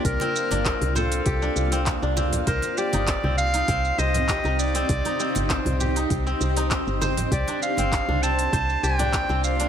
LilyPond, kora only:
\new Staff \with { instrumentName = "Kora" } { \time 4/4 \key c \dorian \tempo 4 = 99 d'16 c'8 d'16 c'8 c''16 r16 g'16 d'8 c'8 d'16 c'8 | c''16 r16 g'16 ees'8 c'8 ees'16 c'8 c''16 r16 g'16 ees'8 c'16~ | c'16 ees'16 c'8 c''16 r16 g'16 ees'8 c'8 ees'16 c'8 c''16 r16 | g'16 d'8 c'8 d'16 c'8 c''16 r16 g'16 d'8 c'8 d'16 | }